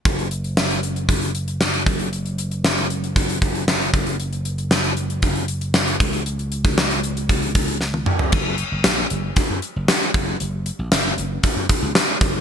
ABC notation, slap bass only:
X:1
M:4/4
L:1/16
Q:1/4=116
K:F#
V:1 name="Slap bass" clef=bass
F,,,12- F,,,2 F,,,2- | F,,,12- F,,,2 F,,,2- | F,,,12- F,,,2 C,,2- | C,,12- C,,2 z2 |
F,,,3 F,,, A,,,2 F,,,2 z F,, z F,,, z2 F,,,2 | F,,,3 A,,, F,,,2 F,,,2 z F,, z C,, z2 F,,,2 |]